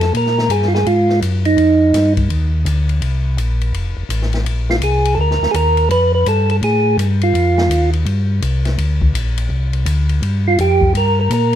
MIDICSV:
0, 0, Header, 1, 4, 480
1, 0, Start_track
1, 0, Tempo, 360144
1, 188, Time_signature, 4, 2, 24, 8
1, 15399, End_track
2, 0, Start_track
2, 0, Title_t, "Tonewheel organ"
2, 0, Program_c, 0, 16
2, 0, Note_on_c, 0, 69, 88
2, 175, Note_off_c, 0, 69, 0
2, 223, Note_on_c, 0, 70, 88
2, 681, Note_on_c, 0, 68, 78
2, 700, Note_off_c, 0, 70, 0
2, 905, Note_on_c, 0, 65, 59
2, 910, Note_off_c, 0, 68, 0
2, 977, Note_off_c, 0, 65, 0
2, 993, Note_on_c, 0, 68, 74
2, 1154, Note_on_c, 0, 65, 86
2, 1164, Note_off_c, 0, 68, 0
2, 1598, Note_off_c, 0, 65, 0
2, 1939, Note_on_c, 0, 63, 74
2, 2844, Note_off_c, 0, 63, 0
2, 6273, Note_on_c, 0, 65, 80
2, 6348, Note_off_c, 0, 65, 0
2, 6443, Note_on_c, 0, 68, 82
2, 6860, Note_on_c, 0, 69, 62
2, 6861, Note_off_c, 0, 68, 0
2, 6920, Note_off_c, 0, 69, 0
2, 6941, Note_on_c, 0, 70, 93
2, 7345, Note_on_c, 0, 68, 70
2, 7350, Note_off_c, 0, 70, 0
2, 7403, Note_off_c, 0, 68, 0
2, 7408, Note_on_c, 0, 70, 89
2, 7847, Note_off_c, 0, 70, 0
2, 7881, Note_on_c, 0, 71, 102
2, 8160, Note_off_c, 0, 71, 0
2, 8191, Note_on_c, 0, 71, 93
2, 8364, Note_off_c, 0, 71, 0
2, 8376, Note_on_c, 0, 69, 87
2, 8663, Note_off_c, 0, 69, 0
2, 8679, Note_on_c, 0, 69, 77
2, 8753, Note_off_c, 0, 69, 0
2, 8849, Note_on_c, 0, 68, 96
2, 9288, Note_off_c, 0, 68, 0
2, 9639, Note_on_c, 0, 65, 69
2, 10534, Note_off_c, 0, 65, 0
2, 13961, Note_on_c, 0, 65, 88
2, 14111, Note_off_c, 0, 65, 0
2, 14135, Note_on_c, 0, 67, 95
2, 14568, Note_off_c, 0, 67, 0
2, 14624, Note_on_c, 0, 70, 89
2, 14917, Note_off_c, 0, 70, 0
2, 14936, Note_on_c, 0, 70, 90
2, 15089, Note_off_c, 0, 70, 0
2, 15105, Note_on_c, 0, 70, 94
2, 15398, Note_off_c, 0, 70, 0
2, 15399, End_track
3, 0, Start_track
3, 0, Title_t, "Tonewheel organ"
3, 0, Program_c, 1, 16
3, 0, Note_on_c, 1, 41, 86
3, 171, Note_off_c, 1, 41, 0
3, 187, Note_on_c, 1, 46, 75
3, 653, Note_off_c, 1, 46, 0
3, 656, Note_on_c, 1, 43, 83
3, 1128, Note_off_c, 1, 43, 0
3, 1153, Note_on_c, 1, 44, 82
3, 1616, Note_on_c, 1, 42, 87
3, 1617, Note_off_c, 1, 44, 0
3, 2088, Note_off_c, 1, 42, 0
3, 2093, Note_on_c, 1, 41, 79
3, 2567, Note_off_c, 1, 41, 0
3, 2581, Note_on_c, 1, 43, 84
3, 3051, Note_off_c, 1, 43, 0
3, 3067, Note_on_c, 1, 39, 84
3, 3534, Note_off_c, 1, 39, 0
3, 3537, Note_on_c, 1, 38, 90
3, 4009, Note_off_c, 1, 38, 0
3, 4023, Note_on_c, 1, 36, 81
3, 4493, Note_off_c, 1, 36, 0
3, 4496, Note_on_c, 1, 34, 93
3, 4969, Note_off_c, 1, 34, 0
3, 4972, Note_on_c, 1, 29, 82
3, 5264, Note_off_c, 1, 29, 0
3, 5286, Note_on_c, 1, 29, 36
3, 5376, Note_off_c, 1, 29, 0
3, 5452, Note_on_c, 1, 33, 86
3, 5925, Note_on_c, 1, 34, 70
3, 5927, Note_off_c, 1, 33, 0
3, 6404, Note_off_c, 1, 34, 0
3, 6413, Note_on_c, 1, 36, 85
3, 6888, Note_off_c, 1, 36, 0
3, 6899, Note_on_c, 1, 38, 76
3, 7188, Note_off_c, 1, 38, 0
3, 7212, Note_on_c, 1, 38, 39
3, 7301, Note_off_c, 1, 38, 0
3, 7387, Note_on_c, 1, 39, 86
3, 7855, Note_off_c, 1, 39, 0
3, 7857, Note_on_c, 1, 41, 79
3, 8330, Note_off_c, 1, 41, 0
3, 8347, Note_on_c, 1, 43, 86
3, 8815, Note_off_c, 1, 43, 0
3, 8826, Note_on_c, 1, 45, 79
3, 9294, Note_off_c, 1, 45, 0
3, 9298, Note_on_c, 1, 43, 97
3, 9770, Note_off_c, 1, 43, 0
3, 9783, Note_on_c, 1, 41, 79
3, 10252, Note_off_c, 1, 41, 0
3, 10257, Note_on_c, 1, 39, 85
3, 10729, Note_off_c, 1, 39, 0
3, 10737, Note_on_c, 1, 43, 81
3, 11209, Note_off_c, 1, 43, 0
3, 11228, Note_on_c, 1, 36, 91
3, 11694, Note_off_c, 1, 36, 0
3, 11702, Note_on_c, 1, 38, 79
3, 12171, Note_off_c, 1, 38, 0
3, 12182, Note_on_c, 1, 34, 78
3, 12651, Note_off_c, 1, 34, 0
3, 12663, Note_on_c, 1, 36, 74
3, 13131, Note_off_c, 1, 36, 0
3, 13136, Note_on_c, 1, 38, 92
3, 13607, Note_off_c, 1, 38, 0
3, 13625, Note_on_c, 1, 43, 80
3, 14092, Note_off_c, 1, 43, 0
3, 14110, Note_on_c, 1, 41, 88
3, 14573, Note_off_c, 1, 41, 0
3, 14579, Note_on_c, 1, 43, 81
3, 15047, Note_off_c, 1, 43, 0
3, 15063, Note_on_c, 1, 46, 95
3, 15399, Note_off_c, 1, 46, 0
3, 15399, End_track
4, 0, Start_track
4, 0, Title_t, "Drums"
4, 14, Note_on_c, 9, 51, 46
4, 17, Note_on_c, 9, 38, 31
4, 147, Note_off_c, 9, 51, 0
4, 150, Note_off_c, 9, 38, 0
4, 194, Note_on_c, 9, 51, 57
4, 327, Note_off_c, 9, 51, 0
4, 349, Note_on_c, 9, 38, 25
4, 482, Note_off_c, 9, 38, 0
4, 509, Note_on_c, 9, 38, 44
4, 642, Note_off_c, 9, 38, 0
4, 665, Note_on_c, 9, 44, 48
4, 665, Note_on_c, 9, 51, 68
4, 798, Note_off_c, 9, 44, 0
4, 798, Note_off_c, 9, 51, 0
4, 826, Note_on_c, 9, 38, 26
4, 959, Note_off_c, 9, 38, 0
4, 994, Note_on_c, 9, 38, 43
4, 1128, Note_off_c, 9, 38, 0
4, 1152, Note_on_c, 9, 51, 53
4, 1285, Note_off_c, 9, 51, 0
4, 1456, Note_on_c, 9, 38, 30
4, 1589, Note_off_c, 9, 38, 0
4, 1630, Note_on_c, 9, 44, 57
4, 1630, Note_on_c, 9, 51, 64
4, 1763, Note_off_c, 9, 44, 0
4, 1763, Note_off_c, 9, 51, 0
4, 1934, Note_on_c, 9, 51, 43
4, 2067, Note_off_c, 9, 51, 0
4, 2103, Note_on_c, 9, 51, 55
4, 2236, Note_off_c, 9, 51, 0
4, 2586, Note_on_c, 9, 44, 57
4, 2586, Note_on_c, 9, 51, 68
4, 2589, Note_on_c, 9, 38, 34
4, 2720, Note_off_c, 9, 44, 0
4, 2720, Note_off_c, 9, 51, 0
4, 2722, Note_off_c, 9, 38, 0
4, 2893, Note_on_c, 9, 51, 44
4, 2895, Note_on_c, 9, 36, 51
4, 3026, Note_off_c, 9, 51, 0
4, 3029, Note_off_c, 9, 36, 0
4, 3067, Note_on_c, 9, 51, 51
4, 3201, Note_off_c, 9, 51, 0
4, 3547, Note_on_c, 9, 44, 59
4, 3547, Note_on_c, 9, 51, 69
4, 3680, Note_off_c, 9, 44, 0
4, 3680, Note_off_c, 9, 51, 0
4, 3854, Note_on_c, 9, 51, 43
4, 3987, Note_off_c, 9, 51, 0
4, 4023, Note_on_c, 9, 51, 61
4, 4156, Note_off_c, 9, 51, 0
4, 4506, Note_on_c, 9, 44, 51
4, 4506, Note_on_c, 9, 51, 59
4, 4640, Note_off_c, 9, 44, 0
4, 4640, Note_off_c, 9, 51, 0
4, 4817, Note_on_c, 9, 51, 42
4, 4950, Note_off_c, 9, 51, 0
4, 4990, Note_on_c, 9, 51, 56
4, 5123, Note_off_c, 9, 51, 0
4, 5466, Note_on_c, 9, 44, 58
4, 5466, Note_on_c, 9, 51, 68
4, 5600, Note_off_c, 9, 44, 0
4, 5600, Note_off_c, 9, 51, 0
4, 5627, Note_on_c, 9, 38, 28
4, 5760, Note_off_c, 9, 38, 0
4, 5767, Note_on_c, 9, 51, 39
4, 5783, Note_on_c, 9, 38, 38
4, 5900, Note_off_c, 9, 51, 0
4, 5917, Note_off_c, 9, 38, 0
4, 5946, Note_on_c, 9, 51, 59
4, 6080, Note_off_c, 9, 51, 0
4, 6257, Note_on_c, 9, 38, 47
4, 6391, Note_off_c, 9, 38, 0
4, 6419, Note_on_c, 9, 44, 49
4, 6419, Note_on_c, 9, 51, 64
4, 6552, Note_off_c, 9, 44, 0
4, 6552, Note_off_c, 9, 51, 0
4, 6736, Note_on_c, 9, 51, 61
4, 6869, Note_off_c, 9, 51, 0
4, 7073, Note_on_c, 9, 38, 29
4, 7206, Note_off_c, 9, 38, 0
4, 7233, Note_on_c, 9, 38, 41
4, 7366, Note_off_c, 9, 38, 0
4, 7389, Note_on_c, 9, 44, 49
4, 7389, Note_on_c, 9, 51, 69
4, 7522, Note_off_c, 9, 44, 0
4, 7522, Note_off_c, 9, 51, 0
4, 7691, Note_on_c, 9, 51, 41
4, 7825, Note_off_c, 9, 51, 0
4, 7871, Note_on_c, 9, 51, 57
4, 8004, Note_off_c, 9, 51, 0
4, 8347, Note_on_c, 9, 44, 59
4, 8347, Note_on_c, 9, 51, 60
4, 8480, Note_off_c, 9, 44, 0
4, 8480, Note_off_c, 9, 51, 0
4, 8657, Note_on_c, 9, 51, 44
4, 8791, Note_off_c, 9, 51, 0
4, 8831, Note_on_c, 9, 51, 53
4, 8965, Note_off_c, 9, 51, 0
4, 9317, Note_on_c, 9, 44, 59
4, 9317, Note_on_c, 9, 51, 62
4, 9450, Note_off_c, 9, 44, 0
4, 9450, Note_off_c, 9, 51, 0
4, 9616, Note_on_c, 9, 51, 44
4, 9749, Note_off_c, 9, 51, 0
4, 9795, Note_on_c, 9, 51, 58
4, 9929, Note_off_c, 9, 51, 0
4, 10100, Note_on_c, 9, 38, 57
4, 10233, Note_off_c, 9, 38, 0
4, 10273, Note_on_c, 9, 44, 55
4, 10273, Note_on_c, 9, 51, 69
4, 10406, Note_off_c, 9, 44, 0
4, 10406, Note_off_c, 9, 51, 0
4, 10574, Note_on_c, 9, 51, 43
4, 10708, Note_off_c, 9, 51, 0
4, 10747, Note_on_c, 9, 51, 52
4, 10880, Note_off_c, 9, 51, 0
4, 11227, Note_on_c, 9, 44, 48
4, 11227, Note_on_c, 9, 51, 65
4, 11360, Note_off_c, 9, 44, 0
4, 11360, Note_off_c, 9, 51, 0
4, 11531, Note_on_c, 9, 51, 45
4, 11533, Note_on_c, 9, 38, 34
4, 11664, Note_off_c, 9, 51, 0
4, 11667, Note_off_c, 9, 38, 0
4, 11708, Note_on_c, 9, 51, 62
4, 11841, Note_off_c, 9, 51, 0
4, 12016, Note_on_c, 9, 36, 63
4, 12149, Note_off_c, 9, 36, 0
4, 12195, Note_on_c, 9, 44, 51
4, 12195, Note_on_c, 9, 51, 73
4, 12329, Note_off_c, 9, 44, 0
4, 12329, Note_off_c, 9, 51, 0
4, 12495, Note_on_c, 9, 51, 64
4, 12629, Note_off_c, 9, 51, 0
4, 12971, Note_on_c, 9, 51, 42
4, 13104, Note_off_c, 9, 51, 0
4, 13143, Note_on_c, 9, 44, 54
4, 13143, Note_on_c, 9, 51, 73
4, 13276, Note_off_c, 9, 44, 0
4, 13276, Note_off_c, 9, 51, 0
4, 13451, Note_on_c, 9, 51, 40
4, 13584, Note_off_c, 9, 51, 0
4, 13630, Note_on_c, 9, 51, 58
4, 13763, Note_off_c, 9, 51, 0
4, 14108, Note_on_c, 9, 44, 57
4, 14108, Note_on_c, 9, 51, 63
4, 14241, Note_off_c, 9, 44, 0
4, 14241, Note_off_c, 9, 51, 0
4, 14414, Note_on_c, 9, 36, 55
4, 14547, Note_off_c, 9, 36, 0
4, 14593, Note_on_c, 9, 51, 55
4, 14727, Note_off_c, 9, 51, 0
4, 15068, Note_on_c, 9, 44, 55
4, 15068, Note_on_c, 9, 51, 64
4, 15201, Note_off_c, 9, 44, 0
4, 15201, Note_off_c, 9, 51, 0
4, 15399, End_track
0, 0, End_of_file